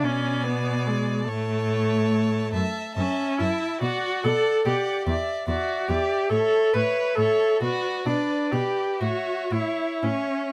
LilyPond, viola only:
\new Staff \with { instrumentName = "Viola" } { \time 6/8 \key a \mixolydian \tempo 4. = 47 cis'8 b8 gis8 a4. | r8 cis'8 e'8 fis'8 a'8 g'8 | r8 fis'8 g'8 a'8 b'8 a'8 | fis'8 d'8 g'8 fis'8 e'8 cis'8 | }